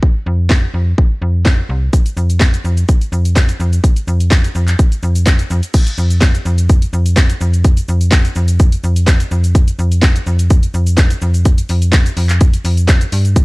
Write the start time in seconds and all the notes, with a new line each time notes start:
0.03 kick
0.26 F2
0.49 kick, snare, clap
0.74 F2
0.98 kick
1.22 F2
1.45 kick, snare, clap
1.69 C2
1.93 kick, closed hi-hat, shaker
2.06 closed hi-hat, shaker
2.17 F2, shaker
2.30 closed hi-hat, shaker
2.40 kick, snare, clap, closed hi-hat, shaker
2.54 closed hi-hat, shaker
2.65 F2, shaker
2.77 closed hi-hat, shaker
2.89 kick, closed hi-hat, shaker
3.01 closed hi-hat, shaker
3.12 F2, shaker
3.25 closed hi-hat, shaker
3.36 kick, snare, clap, closed hi-hat, shaker
3.49 closed hi-hat, shaker
3.60 F2, shaker
3.73 closed hi-hat, shaker
3.84 kick, closed hi-hat, shaker
3.96 closed hi-hat, shaker
4.07 F2, shaker
4.20 closed hi-hat, shaker
4.31 kick, snare, clap, closed hi-hat, shaker
4.44 closed hi-hat, shaker
4.55 F2, shaker
4.68 clap, closed hi-hat, shaker
4.79 kick, closed hi-hat, shaker
4.92 closed hi-hat, shaker
5.03 F2, shaker
5.15 closed hi-hat, shaker
5.26 kick, snare, clap, closed hi-hat, shaker
5.39 closed hi-hat, shaker
5.50 F2, shaker
5.63 closed hi-hat, shaker
5.74 kick, closed hi-hat, crash, shaker
5.87 closed hi-hat, shaker
5.98 F2, shaker
6.10 closed hi-hat, shaker
6.21 kick, snare, clap, closed hi-hat, shaker
6.35 closed hi-hat, shaker
6.45 F2, shaker
6.58 closed hi-hat, shaker
6.69 kick, closed hi-hat, shaker
6.82 closed hi-hat, shaker
6.93 F2, shaker
7.06 closed hi-hat, shaker
7.16 kick, snare, clap, closed hi-hat, shaker
7.30 closed hi-hat, shaker
7.41 F2, shaker
7.54 closed hi-hat, shaker
7.64 kick, closed hi-hat, shaker
7.77 closed hi-hat, shaker
7.88 F2, shaker
8.01 closed hi-hat, shaker
8.11 kick, snare, clap, closed hi-hat, shaker
8.25 closed hi-hat, shaker
8.35 F2, shaker
8.48 closed hi-hat, shaker
8.60 kick, closed hi-hat, shaker
8.72 closed hi-hat, shaker
8.84 F2, shaker
8.96 closed hi-hat, shaker
9.07 kick, snare, clap, closed hi-hat, shaker
9.20 closed hi-hat, shaker
9.31 F2, shaker
9.44 closed hi-hat, shaker
9.55 kick, closed hi-hat, shaker
9.68 closed hi-hat, shaker
9.79 F2, shaker
9.92 closed hi-hat, shaker
10.02 kick, snare, clap, closed hi-hat, shaker
10.16 closed hi-hat, shaker
10.27 F2, shaker
10.39 closed hi-hat, shaker
10.50 kick, closed hi-hat, shaker
10.63 closed hi-hat, shaker
10.74 F2, shaker
10.87 closed hi-hat, shaker
10.97 kick, snare, clap, closed hi-hat, shaker
11.10 closed hi-hat, shaker
11.21 F2, shaker
11.34 closed hi-hat, shaker
11.45 kick, closed hi-hat, shaker
11.58 closed hi-hat, shaker
11.69 F2, open hi-hat, shaker
11.82 closed hi-hat, shaker
11.92 kick, snare, clap, closed hi-hat, shaker
12.06 closed hi-hat, shaker
12.17 F2, open hi-hat, shaker
12.29 clap, closed hi-hat, shaker
12.41 kick, closed hi-hat, shaker
12.54 closed hi-hat, shaker
12.64 F2, open hi-hat, shaker
12.77 closed hi-hat, shaker
12.88 kick, snare, clap, closed hi-hat, shaker
13.01 closed hi-hat, shaker
13.12 G2, open hi-hat, shaker
13.25 closed hi-hat, shaker
13.36 kick, closed hi-hat, shaker